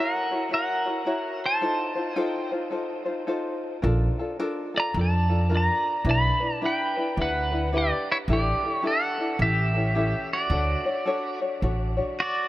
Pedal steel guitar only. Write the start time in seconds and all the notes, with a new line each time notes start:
0.00 A#4 F#5
0.54 A#4 F#5
1.46 C5 A5
2.19 G5
4.78 D5 A#5
4.99 D5 A5
5.55 D5 A#5
6.10 D5 B5
6.54 A5
6.65 B4 G5
7.22 B4 F#5
7.77 G4 D5
8.12 E4 C#5
8.33 G4 D5
8.73 C#5
8.87 A4 F#5
9.42 G4 E5
10.33 F#4 D5
12.20 F#4 D5